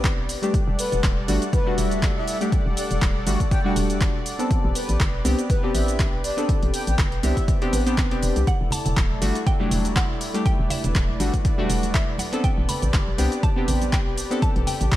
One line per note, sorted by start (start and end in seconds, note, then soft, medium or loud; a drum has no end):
0.00 0.37 A1 medium
0.00 0.39 B3 loud
0.00 0.39 C4 medium
0.00 0.40 D4 medium
0.00 0.40 G4 loud
0.00 0.50 G4 medium
0.00 0.50 B4 medium
0.00 8.43 D5 loud
0.04 kick loud
0.04 clap loud
0.04 closed hi-hat medium
0.04 shaker soft
0.29 open hi-hat medium
0.29 shaker medium
0.42 1.25 G3 medium
0.42 1.25 A3 medium
0.42 1.26 D4 medium
0.42 1.26 G4 medium
0.42 closed hi-hat soft
0.42 shaker soft
0.54 4.47 G3 medium
0.54 4.47 A4 medium
0.54 4.47 F#5 medium
0.54 kick loud
0.54 closed hi-hat medium
0.54 shaker soft
0.68 0.76 E1 loud
0.79 1.00 B4 loud
0.79 open hi-hat loud
0.79 shaker medium
0.92 1.01 E1 loud
0.92 closed hi-hat medium
0.92 shaker soft
1.03 1.23 D1 medium
1.03 kick loud
1.03 clap loud
1.03 closed hi-hat medium
1.03 shaker soft
1.28 1.39 G1 loud
1.28 1.42 G3 loud
1.28 1.42 A3 medium
1.28 1.42 D4 medium
1.28 1.42 F#4 loud
1.28 open hi-hat medium
1.28 shaker medium
1.42 closed hi-hat medium
1.42 shaker soft
1.53 1.74 B4 medium
1.53 kick loud
1.53 closed hi-hat medium
1.53 shaker soft
1.66 2.37 G3 loud
1.66 2.38 A3 medium
1.66 2.38 D4 medium
1.66 2.38 F#4 loud
1.78 2.36 E1 medium
1.78 1.99 E5 medium
1.78 open hi-hat loud
1.78 shaker medium
1.91 closed hi-hat medium
1.91 shaker soft
2.03 kick loud
2.03 clap loud
2.03 closed hi-hat medium
2.03 shaker soft
2.16 2.36 E5 loud
2.27 open hi-hat medium
2.27 shaker medium
2.40 3.24 G3 medium
2.40 3.24 A3 medium
2.40 3.24 D4 medium
2.40 3.24 G4 medium
2.40 closed hi-hat soft
2.40 shaker soft
2.52 kick loud
2.52 closed hi-hat medium
2.52 shaker soft
2.66 2.74 E1 loud
2.77 2.86 D5 medium
2.77 open hi-hat loud
2.77 shaker medium
2.91 2.99 E1 medium
2.91 2.98 D5 medium
2.91 closed hi-hat medium
2.91 shaker soft
3.02 3.21 D1 medium
3.02 kick loud
3.02 clap loud
3.02 closed hi-hat medium
3.02 shaker soft
3.26 3.37 G1 loud
3.26 3.40 G3 loud
3.26 3.40 A3 medium
3.26 3.41 D4 medium
3.26 3.41 F#4 loud
3.26 open hi-hat medium
3.26 shaker medium
3.40 kick medium
3.40 closed hi-hat medium
3.40 shaker soft
3.51 3.60 G5 medium
3.51 kick loud
3.51 closed hi-hat medium
3.51 shaker soft
3.64 4.36 G3 loud
3.64 4.36 A3 medium
3.64 4.36 D4 loud
3.64 4.36 F#4 loud
3.64 3.72 G5 medium
3.76 4.34 E1 medium
3.76 open hi-hat loud
3.76 shaker medium
3.90 closed hi-hat medium
3.90 shaker soft
4.01 kick loud
4.01 clap loud
4.01 closed hi-hat medium
4.01 shaker soft
4.26 open hi-hat medium
4.26 shaker medium
4.39 5.22 B3 medium
4.39 5.22 C4 medium
4.39 5.22 D4 medium
4.39 5.23 A4 medium
4.39 closed hi-hat medium
4.39 shaker soft
4.51 8.43 G4 medium
4.51 8.43 B4 medium
4.51 kick loud
4.51 closed hi-hat medium
4.51 shaker soft
4.64 4.73 A1 loud
4.75 4.96 B4 loud
4.75 open hi-hat loud
4.75 shaker medium
4.89 4.97 A1 medium
4.89 closed hi-hat medium
4.89 shaker soft
5.00 5.20 G1 medium
5.00 kick loud
5.00 clap loud
5.00 closed hi-hat medium
5.00 shaker soft
5.25 5.35 C2 loud
5.25 5.39 B3 medium
5.25 5.39 C4 medium
5.25 5.39 D4 medium
5.25 5.39 G4 loud
5.25 open hi-hat medium
5.25 shaker medium
5.39 closed hi-hat medium
5.39 shaker soft
5.50 5.71 B4 medium
5.50 kick loud
5.50 closed hi-hat medium
5.50 shaker soft
5.63 6.34 B3 loud
5.63 6.34 C4 medium
5.63 6.35 D4 medium
5.63 6.35 G4 loud
5.75 6.32 A1 medium
5.75 5.95 E5 loud
5.75 open hi-hat loud
5.75 shaker medium
5.88 closed hi-hat medium
5.88 shaker medium
5.99 kick loud
5.99 clap loud
5.99 closed hi-hat medium
5.99 shaker soft
6.24 6.45 D5 loud
6.24 open hi-hat medium
6.24 shaker medium
6.37 7.20 B3 medium
6.37 7.21 C4 medium
6.37 7.21 D4 medium
6.37 7.21 A4 medium
6.37 closed hi-hat medium
6.37 shaker soft
6.49 kick loud
6.49 closed hi-hat medium
6.49 shaker soft
6.63 6.71 A1 loud
6.63 closed hi-hat soft
6.74 6.82 G5 medium
6.74 open hi-hat loud
6.74 shaker medium
6.87 6.96 A1 medium
6.87 6.95 G5 medium
6.87 closed hi-hat medium
6.87 shaker soft
6.99 7.18 G1 medium
6.99 kick loud
6.99 clap loud
6.99 closed hi-hat medium
6.99 shaker soft
7.12 closed hi-hat soft
7.23 7.34 C2 loud
7.23 7.37 B3 medium
7.23 7.37 C4 medium
7.23 7.37 D4 medium
7.23 7.37 G4 loud
7.23 7.44 E5 medium
7.23 open hi-hat medium
7.23 shaker medium
7.37 kick medium
7.37 closed hi-hat medium
7.37 shaker soft
7.48 kick loud
7.48 closed hi-hat medium
7.48 shaker soft
7.61 7.84 B3 loud
7.61 7.84 C4 medium
7.61 7.84 D4 medium
7.61 7.84 G4 loud
7.61 closed hi-hat soft
7.73 8.22 A1 medium
7.73 7.82 B4 medium
7.73 open hi-hat loud
7.73 shaker medium
7.86 8.08 B3 loud
7.86 8.08 C4 medium
7.86 8.08 D4 medium
7.86 8.08 G4 loud
7.86 7.94 B4 medium
7.86 closed hi-hat medium
7.86 shaker soft
7.98 kick loud
7.98 clap loud
7.98 closed hi-hat medium
7.98 shaker soft
8.11 8.46 B3 medium
8.11 8.46 C4 medium
8.11 8.46 D4 medium
8.11 8.46 G4 loud
8.11 closed hi-hat soft
8.23 8.33 E1 medium
8.23 open hi-hat medium
8.23 shaker medium
8.36 8.45 C2 loud
8.36 closed hi-hat medium
8.36 shaker soft
8.47 12.40 A3 medium
8.47 12.40 E4 medium
8.47 10.44 A4 medium
8.47 14.96 D5 loud
8.47 8.73 F#5 loud
8.47 kick loud
8.47 closed hi-hat medium
8.47 shaker soft
8.61 8.69 E1 loud
8.71 9.18 A5 loud
8.71 open hi-hat loud
8.71 low conga loud
8.71 shaker medium
8.86 8.94 E1 medium
8.86 closed hi-hat medium
8.86 low conga loud
8.86 shaker soft
8.97 9.16 D1 medium
8.97 kick loud
8.97 clap loud
8.97 closed hi-hat medium
8.97 shaker soft
9.11 high conga medium
9.21 9.32 G1 loud
9.21 9.35 G3 medium
9.21 9.36 A3 medium
9.21 9.36 D4 medium
9.21 9.36 F#4 loud
9.21 open hi-hat loud
9.21 shaker medium
9.35 closed hi-hat medium
9.35 shaker soft
9.46 9.98 G5 loud
9.46 kick loud
9.46 closed hi-hat medium
9.46 shaker soft
9.59 10.32 F#3 loud
9.59 10.31 G3 loud
9.59 10.31 A3 medium
9.59 10.31 D4 medium
9.71 10.29 E1 medium
9.71 open hi-hat loud
9.71 low conga medium
9.71 shaker medium
9.85 closed hi-hat medium
9.85 high conga medium
9.85 shaker soft
9.96 10.47 F#5 loud
9.96 kick loud
9.96 clap loud
9.96 closed hi-hat medium
9.96 shaker soft
10.21 open hi-hat medium
10.21 shaker medium
10.34 11.17 G3 medium
10.34 11.17 A3 medium
10.34 11.17 D4 medium
10.34 11.18 G4 medium
10.34 closed hi-hat medium
10.34 shaker soft
10.46 14.96 B4 medium
10.46 10.71 G5 loud
10.46 kick loud
10.46 closed hi-hat medium
10.46 shaker soft
10.59 10.68 E1 loud
10.70 11.41 E5 medium
10.70 open hi-hat loud
10.70 low conga medium
10.70 shaker medium
10.84 10.93 E1 loud
10.84 closed hi-hat medium
10.84 low conga loud
10.84 shaker soft
10.95 11.15 D1 medium
10.95 kick loud
10.95 clap loud
10.95 closed hi-hat medium
10.95 shaker soft
11.09 high conga medium
11.20 11.30 G1 loud
11.20 11.34 G3 medium
11.20 11.34 A3 medium
11.20 11.34 D4 medium
11.20 11.34 F#4 loud
11.20 open hi-hat loud
11.20 shaker medium
11.34 kick medium
11.34 closed hi-hat medium
11.34 shaker soft
11.45 kick loud
11.45 closed hi-hat medium
11.45 shaker soft
11.58 12.29 G3 loud
11.58 12.29 A3 medium
11.58 12.30 D4 medium
11.58 12.30 F#4 loud
11.58 high conga medium
11.70 12.27 E1 medium
11.70 open hi-hat loud
11.70 shaker medium
11.83 closed hi-hat medium
11.83 high conga medium
11.83 shaker soft
11.94 12.06 E5 medium
11.94 kick loud
11.94 clap loud
11.94 closed hi-hat medium
11.94 shaker soft
12.18 12.45 F#5 medium
12.18 open hi-hat medium
12.18 high conga medium
12.18 shaker medium
12.32 13.15 B3 medium
12.32 13.16 C4 medium
12.32 13.16 D4 medium
12.32 13.16 A4 medium
12.32 closed hi-hat medium
12.32 shaker soft
12.44 14.96 G4 medium
12.44 12.70 G5 loud
12.44 kick loud
12.44 closed hi-hat medium
12.44 shaker soft
12.58 12.66 A1 loud
12.69 13.15 B5 loud
12.69 open hi-hat loud
12.69 low conga medium
12.69 shaker medium
12.82 12.91 A1 medium
12.82 closed hi-hat medium
12.82 low conga medium
12.82 shaker soft
12.94 13.13 G1 medium
12.94 kick loud
12.94 clap loud
12.94 closed hi-hat medium
12.94 shaker soft
13.08 high conga medium
13.18 13.29 C2 loud
13.18 13.32 B3 medium
13.18 13.32 C4 medium
13.18 13.32 D4 medium
13.18 13.32 G4 loud
13.18 open hi-hat loud
13.18 shaker medium
13.32 closed hi-hat medium
13.32 shaker soft
13.43 13.89 A5 loud
13.43 kick loud
13.43 closed hi-hat medium
13.43 shaker soft
13.56 14.28 B3 loud
13.56 14.28 C4 medium
13.56 14.28 D4 medium
13.56 14.28 G4 loud
13.68 14.26 A1 medium
13.68 open hi-hat loud
13.68 low conga medium
13.68 shaker medium
13.82 closed hi-hat medium
13.82 high conga medium
13.82 shaker soft
13.93 14.44 G5 loud
13.93 kick loud
13.93 clap loud
13.93 closed hi-hat medium
13.93 shaker soft
14.18 open hi-hat medium
14.18 shaker medium
14.30 14.96 B3 medium
14.30 14.96 C4 medium
14.30 14.96 D4 medium
14.30 14.96 A4 medium
14.30 closed hi-hat soft
14.30 shaker soft
14.42 14.53 A5 loud
14.42 kick loud
14.42 closed hi-hat medium
14.42 shaker soft
14.56 14.64 A1 loud
14.56 closed hi-hat soft
14.67 14.96 G5 medium
14.67 open hi-hat loud
14.67 low conga medium
14.67 shaker medium
14.81 14.89 A1 medium
14.81 closed hi-hat medium
14.81 low conga medium
14.81 shaker soft
14.92 14.96 G1 medium
14.92 kick loud
14.92 clap loud
14.92 closed hi-hat medium
14.92 shaker soft